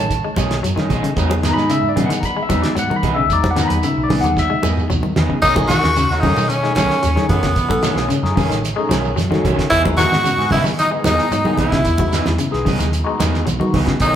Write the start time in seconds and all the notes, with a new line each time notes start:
Already playing: A1 D#3 C#5 A5
0.11 kick, closed hi-hat, shekere
0.24 G#3
0.36 B1 F#3 A3 C#4 D#4 G#4, kick, closed hi-hat, high conga, shekere
0.51 snare, closed hi-hat, shekere
0.63 F#2 F#3, closed hi-hat, shekere
0.76 D#3 C#4 D#4 G#4, snare, high conga
0.89 B1 A3 D#4 G#4, kick, closed hi-hat, low conga, shekere
1.03 C#3, closed hi-hat
1.16 E2 F#3 G#3 B3 D#4 G#4, kick, closed hi-hat, shekere
1.30 F#3, high conga
1.43 D#3 B3 D#4 G#4, snare, closed hi-hat, shekere
1.48 A#5
1.53 G#2 G#4 B5
1.58 D#4, snare, shekere
1.70 C#3 E5, closed hi-hat, shekere
1.83 G#2
1.89 D5
1.96 C#3 B3 D#4 G#4, closed hi-hat, high conga, low conga, shekere
2.06 D#3 E3 F#5
2.10 closed hi-hat, high conga, shekere
2.20 A#5, kick, closed hi-hat
2.25 B5, shekere
2.37 G#3
2.43 E5
2.49 E2 F#3 G#3 B3 D#4 G#4, kick, closed hi-hat, high conga, shekere
2.62 D5, snare, closed hi-hat, shekere
2.75 G#2 F#3 F#5, closed hi-hat, shekere
2.90 D#3 A#5, high conga
2.96 B5
3.03 B1 B3 D#4 G#4, kick, closed hi-hat, low conga, shekere
3.15 C#3 E5
3.30 E2 F#3 G#3 D#4 D5, kick, closed hi-hat, shekere
3.43 F#3, kick, snare, high conga
3.51 F#5
3.55 D#3 B3 D#4 G#4, snare, closed hi-hat, shekere
3.63 A#5
3.67 E2 B5, closed hi-hat, high conga, shekere
3.83 C#3 E5, closed hi-hat, shekere
3.97 B1
4.03 D5
4.09 C#3 B3 G#4, muted clean electric guitar stroke, open hi-hat, high conga, low conga, shekere
4.21 D#2 D#3 F#5, closed hi-hat, high conga, shekere
4.37 E5, kick, snare, shekere
4.50 G#3, high tom
4.62 E2 F#3 B3 D#4 G#4, high conga, shekere
4.77 mid tom, shekere
4.89 B1 F#3, mid tom, low conga, shekere
5.03 D#3, high conga
5.16 E2 B3 D#4 G#4, snare, low conga, shekere
5.30 C#3, floor tom
5.42 B1 D#3 A3 C#4 D#4 G#4, kick, crash, shekere
5.56 F#3 A3 C#4 D#4 G#4, kick, high conga
5.68 D#3 F#4 G#4, snare, closed hi-hat, low conga, shekere
5.83 D#2, snare, shekere
5.96 C#3, snare, closed hi-hat, shekere
6.10 D#2 A3 C#4 D#4 A4, snare
6.20 C#3 D#3 A3 C#4 D#4 G#4, kick, open hi-hat, high conga, low conga
6.24 shekere
6.36 B2 D#3, high conga, shekere
6.49 C#4, closed hi-hat, shekere
6.62 G#3 A3 C#4 D#4 G#4, snare
6.75 B1 D#3 F#3 A3 C#4 G#4, snare, closed hi-hat, high conga, shekere
6.90 snare, shekere
7.03 D#2 F#3, closed hi-hat, shekere
7.16 D#3 A3 C#4 D#4 G#4, snare, high conga
7.29 F#2 D#3 A3 B3 C#4 G#4, kick, closed hi-hat, low conga, shekere
7.33 B3
7.43 C#3, kick, snare, closed hi-hat
7.56 B1, kick, snare, closed hi-hat, shekere
7.69 F#3 A3 C#4 D#4 A4, kick, high conga
7.83 D#3 A3 C#4 G#4, snare, closed hi-hat, shekere
7.96 B1 A3 C#4 G#4, snare, shekere
8.09 C#3, closed hi-hat, shekere
8.22 F#2 A3 C#4 D#4 G#4, snare
8.36 C#3 D#3 A3 C#4 G#4, kick, snare, open hi-hat, high conga, low conga, shekere
8.49 A1 D#3, snare, closed hi-hat, shekere
8.65 closed hi-hat, shekere
8.76 G#3 A3 C#4 D#4 G#4
8.89 B1 D#3 F#3 A3 C#4 G#4, snare, closed hi-hat, high conga, shekere
9.04 shekere
9.16 F#2 F#3, snare, closed hi-hat, low conga, shekere
9.30 D#3 A3 C#4 D#4 F#4 G#4, snare, high conga
9.44 B1 D#3 A3 C#4 G#4, kick, closed hi-hat, low conga, shekere
9.56 C#3, kick, snare, closed hi-hat
9.70 E2 E3 B3 D#4 E4 G#4, kick, snare, closed hi-hat, shekere
9.74 E4
9.84 E3 G#3 B3 D#4 F#4, kick, high conga
9.98 D#3 E3 B3 D#4 F#4 G#4, snare, closed hi-hat, low conga, shekere
10.11 G#2, snare, shekere
10.25 C#3, closed hi-hat, shekere
10.38 G#2 G#3 B3 D#4 G#4, snare
10.51 C#3 E3 B3 D#4 E4 G#4, kick, snare, open hi-hat, high conga, low conga, shekere
10.64 D#3 E3, snare, high conga, shekere
10.79 D#4, closed hi-hat, shekere
10.91 G#3 B3 D#4 G#4
11.04 E2 E3 F#3 B3 D#4 G#4, snare, closed hi-hat, high conga, shekere
11.19 snare, shekere
11.31 G#2 F#3, closed hi-hat, shekere
11.44 D#3 G#3 B3 D#4 G#4, high conga
11.57 B1 B3 D#4 E4 G#4, kick, closed hi-hat, low conga, shekere
11.62 E4
11.72 C#3, kick, snare, closed hi-hat
11.85 E2, kick, closed hi-hat, shekere
11.98 E3 G#3 B3 D#4 F#4, kick, high conga
12.12 E3 B3 D#4 G#4, snare, closed hi-hat, shekere
12.26 E2, snare, high conga, shekere
12.38 C#3, closed hi-hat, shekere
12.51 B1 G#3 B3 D#4 G#4, snare
12.65 C#3 E3 B3 D#4 G#4, kick, snare, open hi-hat, high conga, low conga, shekere
12.79 D#2 D#3, snare, closed hi-hat, high conga, shekere
12.93 closed hi-hat, shekere
13.04 G#3 B3 D#4 F#4
13.20 E2 D#3 E3 B3 D#4 G#4, snare, closed hi-hat, high conga, shekere
13.34 snare, shekere
13.46 B1 F#3, closed hi-hat, low conga, shekere
13.59 D#3 G#3 B3 D#4 F#4, high conga
13.74 C#2 E3 B3 D#4 G#4, kick, open hi-hat, high conga, low conga, shekere
13.86 C#3, kick, snare, closed hi-hat
14.00 B1 D#3 A3 C#4 D#4 G#4, kick, closed hi-hat, shekere
14.04 D#4